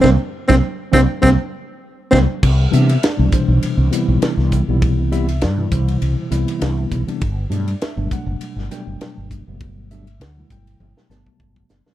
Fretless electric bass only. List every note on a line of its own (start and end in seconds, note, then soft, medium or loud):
0.04 0.16 C2 medium
0.50 0.60 C2 medium
0.94 1.05 C2 medium
1.24 1.36 C2 medium
2.13 2.25 C2 medium
2.43 2.66 C2 loud
2.73 2.96 C3 medium
3.19 3.29 C2 medium
3.48 3.59 B1 medium
3.77 3.88 C2 medium
4.08 4.19 B1 medium
4.37 4.60 C2 medium
4.68 4.99 B1 medium
4.99 5.45 C2 medium
5.44 5.66 G2 medium
5.72 5.95 C2 medium
6.02 6.14 C2 medium
6.31 6.44 C2 medium
6.62 6.84 C2 medium
6.92 7.04 B1 medium
7.22 7.44 G1 medium
7.50 7.73 G2 medium
7.97 8.07 G1 medium
8.26 8.37 F#1 medium
8.56 8.67 G1 medium
8.87 8.97 F#1 medium
9.17 9.40 G1 medium
9.48 9.77 F#1 medium
9.77 10.21 G1 medium
10.20 10.43 D2 medium
10.51 10.73 G1 medium
10.80 10.92 G1 medium
11.09 11.22 G1 medium
11.40 11.63 G1 medium
11.70 11.82 F#1 medium